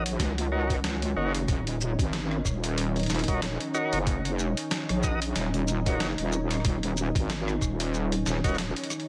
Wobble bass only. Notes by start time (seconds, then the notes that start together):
Already playing: A#1
0.19 C#2
1.16 F#1
1.48 D#1
1.99 G#1
2.45 D#1
3.10 D#1
3.28 D#1
3.92 F#1
4.36 F1
4.90 A#1
5.35 D#1
6.00 F#1
6.19 D#1
6.65 D#1
7.15 G#1
7.62 D#1
8.26 D#1
8.44 D#1